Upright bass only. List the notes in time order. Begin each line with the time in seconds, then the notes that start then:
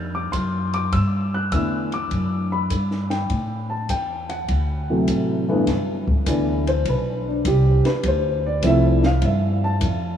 Already playing: F2
0.33 F#2
0.92 G2
1.52 E2
2.11 F#2
2.70 G2
3.30 A2
3.89 E2
4.48 D2
5.08 A1
5.67 G1
6.26 D2
6.85 B1
7.45 C2
7.85 muted upright bass stroke
8.04 D2
8.63 C2
9.22 G2
9.81 F2